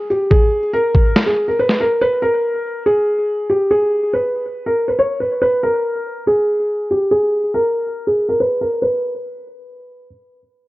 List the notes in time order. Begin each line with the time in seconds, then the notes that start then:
0.10 G4
0.30 G#4, kick
0.73 A#4
0.95 kick
1.16 snare
1.26 G#4
1.48 A#4
1.59 B4
1.69 snare
1.80 A#4
2.01 B4
2.22 A#4
2.86 G#4
3.50 G4
3.71 G#4
4.14 B4
4.66 A#4
4.88 B4
4.99 C#5
5.20 B4
5.42 B4
5.63 A#4
6.27 G#4
6.91 G4
7.11 G#4
7.54 A#4
8.07 G#4
8.29 A#4
8.40 B4
8.61 A#4
8.82 B4